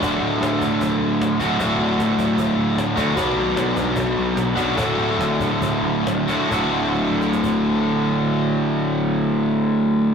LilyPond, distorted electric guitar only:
\new Staff \with { instrumentName = "Distorted electric guitar" } { \clef bass \time 4/4 \key d \major \tempo 4 = 146 <d, a, d a fis'>2.~ <d, a, d a fis'>8 <d, a, d a fis'>8 | <d, a, d a fis'>2.~ <d, a, d a fis'>8 <d, a, d a fis'>8 | <b, fis b d' fis' b'>2.~ <b, fis b d' fis' b'>8 <b, fis b d' fis' b'>8 | <d, a, d a fis'>2.~ <d, a, d a fis'>8 <d, a, d a fis'>8 |
<d, a, d a fis'>1~ | <d, a, d a fis'>1 | }